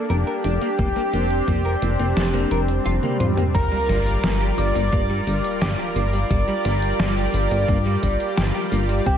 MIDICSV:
0, 0, Header, 1, 9, 480
1, 0, Start_track
1, 0, Key_signature, -2, "minor"
1, 0, Tempo, 689655
1, 548, Time_signature, 4, 2, 24, 8
1, 6387, End_track
2, 0, Start_track
2, 0, Title_t, "FM electric piano"
2, 0, Program_c, 0, 5
2, 2468, Note_on_c, 0, 82, 95
2, 3092, Note_off_c, 0, 82, 0
2, 3188, Note_on_c, 0, 86, 95
2, 3812, Note_off_c, 0, 86, 0
2, 3908, Note_on_c, 0, 86, 95
2, 6212, Note_off_c, 0, 86, 0
2, 6309, Note_on_c, 0, 79, 99
2, 6387, Note_off_c, 0, 79, 0
2, 6387, End_track
3, 0, Start_track
3, 0, Title_t, "Supersaw synth"
3, 0, Program_c, 1, 81
3, 69, Note_on_c, 1, 67, 112
3, 2373, Note_off_c, 1, 67, 0
3, 2468, Note_on_c, 1, 70, 113
3, 3092, Note_off_c, 1, 70, 0
3, 3188, Note_on_c, 1, 74, 108
3, 3812, Note_off_c, 1, 74, 0
3, 3908, Note_on_c, 1, 74, 114
3, 6212, Note_off_c, 1, 74, 0
3, 6308, Note_on_c, 1, 67, 113
3, 6387, Note_off_c, 1, 67, 0
3, 6387, End_track
4, 0, Start_track
4, 0, Title_t, "Analog synth pad"
4, 0, Program_c, 2, 89
4, 0, Note_on_c, 2, 58, 70
4, 0, Note_on_c, 2, 62, 84
4, 530, Note_off_c, 2, 58, 0
4, 548, Note_on_c, 2, 60, 73
4, 2441, Note_off_c, 2, 62, 0
4, 2449, Note_off_c, 2, 60, 0
4, 2469, Note_on_c, 2, 55, 78
4, 2469, Note_on_c, 2, 65, 71
4, 2469, Note_on_c, 2, 70, 87
4, 2469, Note_on_c, 2, 74, 70
4, 4389, Note_on_c, 2, 67, 68
4, 6281, Note_off_c, 2, 65, 0
4, 6281, Note_off_c, 2, 70, 0
4, 6290, Note_off_c, 2, 67, 0
4, 6309, Note_on_c, 2, 48, 78
4, 6309, Note_on_c, 2, 58, 75
4, 6309, Note_on_c, 2, 63, 88
4, 6387, Note_off_c, 2, 48, 0
4, 6387, Note_off_c, 2, 55, 0
4, 6387, Note_off_c, 2, 58, 0
4, 6387, Note_off_c, 2, 63, 0
4, 6387, Note_off_c, 2, 74, 0
4, 6387, End_track
5, 0, Start_track
5, 0, Title_t, "Clean electric guitar"
5, 0, Program_c, 3, 27
5, 68, Note_on_c, 3, 70, 75
5, 105, Note_off_c, 3, 70, 0
5, 189, Note_on_c, 3, 70, 70
5, 249, Note_off_c, 3, 70, 0
5, 309, Note_on_c, 3, 62, 74
5, 369, Note_off_c, 3, 62, 0
5, 429, Note_on_c, 3, 58, 76
5, 465, Note_off_c, 3, 58, 0
5, 549, Note_on_c, 3, 58, 77
5, 609, Note_off_c, 3, 58, 0
5, 669, Note_on_c, 3, 58, 100
5, 705, Note_off_c, 3, 58, 0
5, 789, Note_on_c, 3, 58, 72
5, 879, Note_off_c, 3, 58, 0
5, 1028, Note_on_c, 3, 58, 79
5, 1118, Note_off_c, 3, 58, 0
5, 1148, Note_on_c, 3, 70, 73
5, 1208, Note_off_c, 3, 70, 0
5, 1268, Note_on_c, 3, 58, 71
5, 1328, Note_off_c, 3, 58, 0
5, 1388, Note_on_c, 3, 58, 100
5, 1424, Note_off_c, 3, 58, 0
5, 1508, Note_on_c, 3, 62, 83
5, 1568, Note_off_c, 3, 62, 0
5, 1628, Note_on_c, 3, 58, 102
5, 1718, Note_off_c, 3, 58, 0
5, 1748, Note_on_c, 3, 70, 99
5, 1808, Note_off_c, 3, 70, 0
5, 1988, Note_on_c, 3, 65, 97
5, 2048, Note_off_c, 3, 65, 0
5, 2107, Note_on_c, 3, 58, 72
5, 2198, Note_off_c, 3, 58, 0
5, 2227, Note_on_c, 3, 65, 73
5, 2264, Note_off_c, 3, 65, 0
5, 2347, Note_on_c, 3, 58, 72
5, 2384, Note_off_c, 3, 58, 0
5, 2467, Note_on_c, 3, 55, 82
5, 2528, Note_off_c, 3, 55, 0
5, 2587, Note_on_c, 3, 55, 101
5, 2624, Note_off_c, 3, 55, 0
5, 2708, Note_on_c, 3, 55, 75
5, 2798, Note_off_c, 3, 55, 0
5, 2948, Note_on_c, 3, 55, 80
5, 3038, Note_off_c, 3, 55, 0
5, 3068, Note_on_c, 3, 67, 73
5, 3128, Note_off_c, 3, 67, 0
5, 3188, Note_on_c, 3, 55, 70
5, 3248, Note_off_c, 3, 55, 0
5, 3309, Note_on_c, 3, 55, 100
5, 3345, Note_off_c, 3, 55, 0
5, 3429, Note_on_c, 3, 58, 89
5, 3489, Note_off_c, 3, 58, 0
5, 3548, Note_on_c, 3, 55, 104
5, 3638, Note_off_c, 3, 55, 0
5, 3668, Note_on_c, 3, 55, 76
5, 3758, Note_off_c, 3, 55, 0
5, 3908, Note_on_c, 3, 67, 80
5, 3944, Note_off_c, 3, 67, 0
5, 4028, Note_on_c, 3, 67, 71
5, 4088, Note_off_c, 3, 67, 0
5, 4148, Note_on_c, 3, 58, 79
5, 4209, Note_off_c, 3, 58, 0
5, 4268, Note_on_c, 3, 55, 78
5, 4304, Note_off_c, 3, 55, 0
5, 4388, Note_on_c, 3, 55, 81
5, 4448, Note_off_c, 3, 55, 0
5, 4508, Note_on_c, 3, 55, 105
5, 4544, Note_off_c, 3, 55, 0
5, 4628, Note_on_c, 3, 55, 77
5, 4718, Note_off_c, 3, 55, 0
5, 4868, Note_on_c, 3, 55, 79
5, 4958, Note_off_c, 3, 55, 0
5, 4988, Note_on_c, 3, 67, 78
5, 5048, Note_off_c, 3, 67, 0
5, 5108, Note_on_c, 3, 55, 71
5, 5168, Note_off_c, 3, 55, 0
5, 5228, Note_on_c, 3, 55, 99
5, 5264, Note_off_c, 3, 55, 0
5, 5348, Note_on_c, 3, 58, 85
5, 5408, Note_off_c, 3, 58, 0
5, 5467, Note_on_c, 3, 55, 103
5, 5558, Note_off_c, 3, 55, 0
5, 5588, Note_on_c, 3, 55, 78
5, 5678, Note_off_c, 3, 55, 0
5, 5828, Note_on_c, 3, 67, 83
5, 5864, Note_off_c, 3, 67, 0
5, 5948, Note_on_c, 3, 67, 76
5, 6008, Note_off_c, 3, 67, 0
5, 6069, Note_on_c, 3, 58, 77
5, 6129, Note_off_c, 3, 58, 0
5, 6188, Note_on_c, 3, 55, 79
5, 6224, Note_off_c, 3, 55, 0
5, 6307, Note_on_c, 3, 60, 80
5, 6368, Note_off_c, 3, 60, 0
5, 6387, End_track
6, 0, Start_track
6, 0, Title_t, "Analog synth bass"
6, 0, Program_c, 4, 38
6, 68, Note_on_c, 4, 29, 85
6, 167, Note_off_c, 4, 29, 0
6, 308, Note_on_c, 4, 29, 92
6, 407, Note_off_c, 4, 29, 0
6, 548, Note_on_c, 4, 29, 97
6, 647, Note_off_c, 4, 29, 0
6, 789, Note_on_c, 4, 29, 91
6, 986, Note_off_c, 4, 29, 0
6, 1028, Note_on_c, 4, 29, 85
6, 1226, Note_off_c, 4, 29, 0
6, 1269, Note_on_c, 4, 29, 90
6, 1367, Note_off_c, 4, 29, 0
6, 1388, Note_on_c, 4, 29, 93
6, 1487, Note_off_c, 4, 29, 0
6, 1508, Note_on_c, 4, 29, 91
6, 1706, Note_off_c, 4, 29, 0
6, 1749, Note_on_c, 4, 29, 91
6, 1946, Note_off_c, 4, 29, 0
6, 1989, Note_on_c, 4, 29, 87
6, 2087, Note_off_c, 4, 29, 0
6, 2229, Note_on_c, 4, 41, 79
6, 2327, Note_off_c, 4, 41, 0
6, 2468, Note_on_c, 4, 31, 93
6, 2567, Note_off_c, 4, 31, 0
6, 2708, Note_on_c, 4, 31, 96
6, 2905, Note_off_c, 4, 31, 0
6, 2948, Note_on_c, 4, 31, 88
6, 3145, Note_off_c, 4, 31, 0
6, 3188, Note_on_c, 4, 31, 93
6, 3287, Note_off_c, 4, 31, 0
6, 3307, Note_on_c, 4, 31, 103
6, 3407, Note_off_c, 4, 31, 0
6, 3428, Note_on_c, 4, 43, 96
6, 3625, Note_off_c, 4, 43, 0
6, 3668, Note_on_c, 4, 31, 95
6, 3767, Note_off_c, 4, 31, 0
6, 3908, Note_on_c, 4, 31, 85
6, 4007, Note_off_c, 4, 31, 0
6, 4148, Note_on_c, 4, 31, 88
6, 4345, Note_off_c, 4, 31, 0
6, 4388, Note_on_c, 4, 31, 95
6, 4487, Note_off_c, 4, 31, 0
6, 4628, Note_on_c, 4, 31, 94
6, 4825, Note_off_c, 4, 31, 0
6, 4867, Note_on_c, 4, 31, 86
6, 5065, Note_off_c, 4, 31, 0
6, 5108, Note_on_c, 4, 31, 94
6, 5207, Note_off_c, 4, 31, 0
6, 5228, Note_on_c, 4, 31, 104
6, 5327, Note_off_c, 4, 31, 0
6, 5348, Note_on_c, 4, 43, 92
6, 5545, Note_off_c, 4, 43, 0
6, 5588, Note_on_c, 4, 31, 97
6, 5687, Note_off_c, 4, 31, 0
6, 5828, Note_on_c, 4, 31, 88
6, 5927, Note_off_c, 4, 31, 0
6, 6068, Note_on_c, 4, 31, 86
6, 6265, Note_off_c, 4, 31, 0
6, 6308, Note_on_c, 4, 36, 98
6, 6387, Note_off_c, 4, 36, 0
6, 6387, End_track
7, 0, Start_track
7, 0, Title_t, "Sub drop"
7, 0, Program_c, 5, 103
7, 2469, Note_on_c, 5, 60, 75
7, 4389, Note_off_c, 5, 60, 0
7, 6387, End_track
8, 0, Start_track
8, 0, Title_t, "Swell"
8, 0, Program_c, 6, 103
8, 1509, Note_on_c, 6, 60, 75
8, 2469, Note_off_c, 6, 60, 0
8, 6387, End_track
9, 0, Start_track
9, 0, Title_t, "Drums"
9, 69, Note_on_c, 9, 42, 50
9, 139, Note_off_c, 9, 42, 0
9, 189, Note_on_c, 9, 42, 25
9, 259, Note_off_c, 9, 42, 0
9, 308, Note_on_c, 9, 42, 93
9, 378, Note_off_c, 9, 42, 0
9, 428, Note_on_c, 9, 42, 47
9, 498, Note_off_c, 9, 42, 0
9, 548, Note_on_c, 9, 36, 104
9, 548, Note_on_c, 9, 42, 52
9, 618, Note_off_c, 9, 36, 0
9, 618, Note_off_c, 9, 42, 0
9, 669, Note_on_c, 9, 42, 26
9, 738, Note_off_c, 9, 42, 0
9, 789, Note_on_c, 9, 42, 88
9, 858, Note_off_c, 9, 42, 0
9, 909, Note_on_c, 9, 42, 53
9, 978, Note_off_c, 9, 42, 0
9, 1028, Note_on_c, 9, 36, 57
9, 1029, Note_on_c, 9, 42, 53
9, 1098, Note_off_c, 9, 36, 0
9, 1098, Note_off_c, 9, 42, 0
9, 1149, Note_on_c, 9, 42, 25
9, 1218, Note_off_c, 9, 42, 0
9, 1268, Note_on_c, 9, 42, 90
9, 1338, Note_off_c, 9, 42, 0
9, 1389, Note_on_c, 9, 42, 48
9, 1458, Note_off_c, 9, 42, 0
9, 1509, Note_on_c, 9, 38, 107
9, 1509, Note_on_c, 9, 42, 50
9, 1578, Note_off_c, 9, 38, 0
9, 1578, Note_off_c, 9, 42, 0
9, 1628, Note_on_c, 9, 42, 24
9, 1698, Note_off_c, 9, 42, 0
9, 1749, Note_on_c, 9, 42, 87
9, 1818, Note_off_c, 9, 42, 0
9, 1868, Note_on_c, 9, 42, 53
9, 1938, Note_off_c, 9, 42, 0
9, 1989, Note_on_c, 9, 42, 52
9, 2059, Note_off_c, 9, 42, 0
9, 2109, Note_on_c, 9, 42, 27
9, 2109, Note_on_c, 9, 48, 52
9, 2179, Note_off_c, 9, 42, 0
9, 2179, Note_off_c, 9, 48, 0
9, 2229, Note_on_c, 9, 42, 93
9, 2229, Note_on_c, 9, 47, 76
9, 2298, Note_off_c, 9, 42, 0
9, 2298, Note_off_c, 9, 47, 0
9, 2349, Note_on_c, 9, 42, 53
9, 2349, Note_on_c, 9, 45, 79
9, 2418, Note_off_c, 9, 42, 0
9, 2418, Note_off_c, 9, 45, 0
9, 2468, Note_on_c, 9, 36, 118
9, 2469, Note_on_c, 9, 42, 55
9, 2469, Note_on_c, 9, 49, 99
9, 2469, Note_on_c, 9, 54, 28
9, 2538, Note_off_c, 9, 36, 0
9, 2538, Note_off_c, 9, 42, 0
9, 2538, Note_off_c, 9, 49, 0
9, 2538, Note_off_c, 9, 54, 0
9, 2589, Note_on_c, 9, 42, 28
9, 2658, Note_off_c, 9, 42, 0
9, 2709, Note_on_c, 9, 38, 35
9, 2709, Note_on_c, 9, 42, 97
9, 2709, Note_on_c, 9, 54, 68
9, 2778, Note_off_c, 9, 38, 0
9, 2778, Note_off_c, 9, 42, 0
9, 2778, Note_off_c, 9, 54, 0
9, 2829, Note_on_c, 9, 42, 55
9, 2829, Note_on_c, 9, 54, 40
9, 2898, Note_off_c, 9, 42, 0
9, 2898, Note_off_c, 9, 54, 0
9, 2949, Note_on_c, 9, 38, 121
9, 2949, Note_on_c, 9, 42, 55
9, 2949, Note_on_c, 9, 54, 29
9, 3018, Note_off_c, 9, 38, 0
9, 3018, Note_off_c, 9, 42, 0
9, 3018, Note_off_c, 9, 54, 0
9, 3069, Note_on_c, 9, 42, 27
9, 3138, Note_off_c, 9, 42, 0
9, 3188, Note_on_c, 9, 46, 78
9, 3188, Note_on_c, 9, 54, 67
9, 3258, Note_off_c, 9, 46, 0
9, 3258, Note_off_c, 9, 54, 0
9, 3309, Note_on_c, 9, 42, 54
9, 3309, Note_on_c, 9, 54, 36
9, 3378, Note_off_c, 9, 42, 0
9, 3378, Note_off_c, 9, 54, 0
9, 3428, Note_on_c, 9, 36, 119
9, 3428, Note_on_c, 9, 42, 56
9, 3428, Note_on_c, 9, 54, 28
9, 3498, Note_off_c, 9, 36, 0
9, 3498, Note_off_c, 9, 42, 0
9, 3498, Note_off_c, 9, 54, 0
9, 3548, Note_on_c, 9, 42, 28
9, 3618, Note_off_c, 9, 42, 0
9, 3668, Note_on_c, 9, 42, 93
9, 3668, Note_on_c, 9, 54, 68
9, 3738, Note_off_c, 9, 42, 0
9, 3738, Note_off_c, 9, 54, 0
9, 3788, Note_on_c, 9, 42, 55
9, 3788, Note_on_c, 9, 54, 40
9, 3858, Note_off_c, 9, 42, 0
9, 3858, Note_off_c, 9, 54, 0
9, 3908, Note_on_c, 9, 38, 122
9, 3908, Note_on_c, 9, 42, 54
9, 3908, Note_on_c, 9, 54, 28
9, 3978, Note_off_c, 9, 38, 0
9, 3978, Note_off_c, 9, 42, 0
9, 3978, Note_off_c, 9, 54, 0
9, 4029, Note_on_c, 9, 42, 29
9, 4098, Note_off_c, 9, 42, 0
9, 4148, Note_on_c, 9, 46, 87
9, 4148, Note_on_c, 9, 54, 70
9, 4218, Note_off_c, 9, 46, 0
9, 4218, Note_off_c, 9, 54, 0
9, 4269, Note_on_c, 9, 42, 55
9, 4269, Note_on_c, 9, 54, 39
9, 4339, Note_off_c, 9, 42, 0
9, 4339, Note_off_c, 9, 54, 0
9, 4388, Note_on_c, 9, 36, 114
9, 4389, Note_on_c, 9, 42, 54
9, 4389, Note_on_c, 9, 54, 29
9, 4458, Note_off_c, 9, 36, 0
9, 4458, Note_off_c, 9, 42, 0
9, 4458, Note_off_c, 9, 54, 0
9, 4509, Note_on_c, 9, 42, 28
9, 4578, Note_off_c, 9, 42, 0
9, 4629, Note_on_c, 9, 38, 35
9, 4629, Note_on_c, 9, 42, 91
9, 4629, Note_on_c, 9, 54, 63
9, 4698, Note_off_c, 9, 38, 0
9, 4698, Note_off_c, 9, 42, 0
9, 4698, Note_off_c, 9, 54, 0
9, 4749, Note_on_c, 9, 42, 57
9, 4749, Note_on_c, 9, 54, 38
9, 4818, Note_off_c, 9, 42, 0
9, 4818, Note_off_c, 9, 54, 0
9, 4869, Note_on_c, 9, 38, 123
9, 4869, Note_on_c, 9, 42, 54
9, 4869, Note_on_c, 9, 54, 29
9, 4938, Note_off_c, 9, 38, 0
9, 4938, Note_off_c, 9, 42, 0
9, 4938, Note_off_c, 9, 54, 0
9, 4989, Note_on_c, 9, 42, 28
9, 5058, Note_off_c, 9, 42, 0
9, 5109, Note_on_c, 9, 46, 79
9, 5109, Note_on_c, 9, 54, 67
9, 5178, Note_off_c, 9, 46, 0
9, 5178, Note_off_c, 9, 54, 0
9, 5228, Note_on_c, 9, 42, 51
9, 5228, Note_on_c, 9, 54, 36
9, 5298, Note_off_c, 9, 42, 0
9, 5298, Note_off_c, 9, 54, 0
9, 5348, Note_on_c, 9, 36, 121
9, 5348, Note_on_c, 9, 42, 55
9, 5348, Note_on_c, 9, 54, 27
9, 5418, Note_off_c, 9, 36, 0
9, 5418, Note_off_c, 9, 42, 0
9, 5418, Note_off_c, 9, 54, 0
9, 5468, Note_on_c, 9, 42, 26
9, 5538, Note_off_c, 9, 42, 0
9, 5588, Note_on_c, 9, 36, 65
9, 5588, Note_on_c, 9, 42, 97
9, 5588, Note_on_c, 9, 54, 68
9, 5658, Note_off_c, 9, 36, 0
9, 5658, Note_off_c, 9, 42, 0
9, 5658, Note_off_c, 9, 54, 0
9, 5709, Note_on_c, 9, 42, 54
9, 5709, Note_on_c, 9, 54, 38
9, 5778, Note_off_c, 9, 42, 0
9, 5778, Note_off_c, 9, 54, 0
9, 5829, Note_on_c, 9, 38, 125
9, 5829, Note_on_c, 9, 42, 57
9, 5829, Note_on_c, 9, 54, 29
9, 5899, Note_off_c, 9, 38, 0
9, 5899, Note_off_c, 9, 42, 0
9, 5899, Note_off_c, 9, 54, 0
9, 5949, Note_on_c, 9, 42, 30
9, 6018, Note_off_c, 9, 42, 0
9, 6069, Note_on_c, 9, 46, 80
9, 6069, Note_on_c, 9, 54, 72
9, 6138, Note_off_c, 9, 46, 0
9, 6138, Note_off_c, 9, 54, 0
9, 6188, Note_on_c, 9, 42, 55
9, 6188, Note_on_c, 9, 54, 38
9, 6258, Note_off_c, 9, 42, 0
9, 6258, Note_off_c, 9, 54, 0
9, 6308, Note_on_c, 9, 36, 122
9, 6308, Note_on_c, 9, 42, 52
9, 6308, Note_on_c, 9, 54, 28
9, 6378, Note_off_c, 9, 36, 0
9, 6378, Note_off_c, 9, 42, 0
9, 6378, Note_off_c, 9, 54, 0
9, 6387, End_track
0, 0, End_of_file